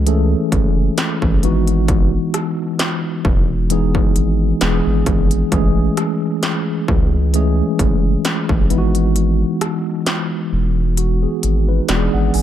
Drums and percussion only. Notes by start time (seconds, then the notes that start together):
0.07 closed hi-hat
0.52 kick, closed hi-hat
0.98 snare, closed hi-hat
1.22 kick
1.43 closed hi-hat
1.67 closed hi-hat
1.88 kick, closed hi-hat
2.34 cross-stick, closed hi-hat
2.79 snare, closed hi-hat
3.25 kick
3.70 closed hi-hat
3.95 kick
4.16 closed hi-hat
4.61 snare, closed hi-hat
5.06 kick, closed hi-hat
5.31 closed hi-hat
5.52 kick, closed hi-hat
5.97 cross-stick, closed hi-hat
6.43 snare, closed hi-hat
6.88 kick
7.34 closed hi-hat
7.79 kick, closed hi-hat
8.25 snare, closed hi-hat
8.49 kick
8.70 closed hi-hat
8.95 closed hi-hat
9.16 closed hi-hat
9.61 cross-stick, closed hi-hat
10.06 snare, closed hi-hat
10.97 closed hi-hat
11.43 closed hi-hat
11.89 snare, closed hi-hat
12.34 open hi-hat